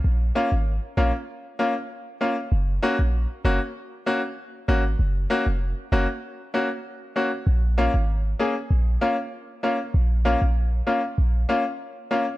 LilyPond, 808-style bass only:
\new Staff \with { instrumentName = "808-style bass" } { \clef bass \time 4/4 \key bes \minor \tempo 4 = 97 bes,,8 r16 aes,,8 r16 bes,,16 r2 r16 | ges,,8 r16 bes,,8 r16 ges,,16 r4. r16 aes,,8 | ges,,8 r16 f,,8 r16 ges,,16 r2 r16 | bes,,8. aes,,8. r8 bes,,8 r4. |
bes,,8. bes,,8. r8 bes,,8 r4. | }